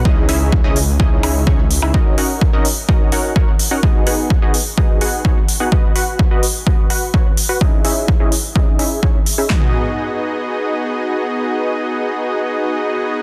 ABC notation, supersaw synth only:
X:1
M:4/4
L:1/16
Q:1/4=127
K:G#m
V:1 name="Supersaw synth"
[CDEGd]2 [CDEGe]3 [CDEGd] z2 [CDEGd]2 [CDEGe]2 [CDEGc] z2 [CDEGe] | [CDFAd]2 [CDFAf]3 [CDFAd] z2 [CDFAd]2 [CDFAf]2 [CDFAc] z2 [CDFAf] | [B,FGd]2 [B,DFGf]3 [B,DFGd] z2 [B,DFGd]2 [B,DFGf]2 [B,DFGc] z2 [B,DFGf] | [FBd]2 [FBf]3 [FBd] z2 [FBd]2 [FBf]2 [FBc] z2 [FBf] |
[CDEGd]2 [CDEGe]3 [CDEGd] z2 [CDEGd]2 [CDEGe]2 [CDEGc] z2 [CDEGe] | [B,DFGd]16- | [B,DFGd]16 |]